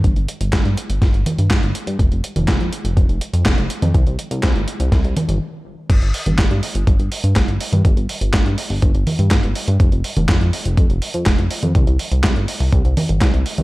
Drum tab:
CC |----------------|----------------|----------------|x---------------|
HH |xxxxxxxxxxxxxxxx|xxxxxxxxxxxxxxxx|xxxxxxxxxxxx----|xxoxxxoxxxoxxxox|
CP |----x-------x---|----x-------x---|----x-----------|----x-------x---|
SD |----o---o---o---|----o-------o---|----o---o-------|----o-------o---|
CG |----------o-----|---o-----------o|----------o-----|---o-----------o|
BD |o---o---o---o---|o---o---o---o---|o---o---o-------|o---o---o---o---|

CC |----------------|----------------|----------------|
HH |xxoxxxooxxoxxxox|xxoxxxoxxxoxxxox|xxoxxxooxxoxxxox|
CP |----x-------x---|----x-------x---|----x-------x---|
SD |----o-------o---|----o-------o---|----o-------o---|
CG |----------o-----|---o-----------o|----------o----o|
BD |o---o---o---o---|o---o---o---o---|o---o---o---o---|